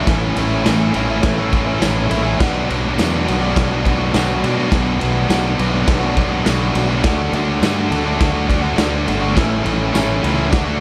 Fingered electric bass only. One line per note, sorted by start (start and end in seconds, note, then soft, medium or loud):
0.07 0.35 A1 loud
0.37 0.64 A1 medium
0.67 0.94 A1 loud
0.95 1.23 A1 medium
1.24 1.79 A1 medium
1.82 2.10 A1 medium
2.11 2.39 A#1 medium
2.40 2.68 B1 loud
2.70 2.97 B1 medium
2.99 3.26 E2 loud
3.29 3.56 B1 medium
3.57 4.11 B1 loud
4.15 4.42 B1 medium
4.44 4.71 B2 medium
4.72 5.00 B1 medium
5.03 5.29 B1 medium
5.30 5.57 B1 loud
5.59 5.87 B1 medium
5.87 6.43 B1 loud
6.47 6.74 B1 medium
6.75 7.03 B1 loud
7.04 7.32 D2 loud
7.33 7.60 D2 loud
7.61 7.89 G2 loud
7.90 8.18 D2 medium
8.21 8.76 D2 loud
8.78 9.06 D2 loud
9.08 9.35 G1 loud
9.37 9.64 A1 medium
9.65 9.93 A1 loud
9.94 10.22 A1 medium
10.24 10.52 C#2 medium
10.53 10.80 D2 medium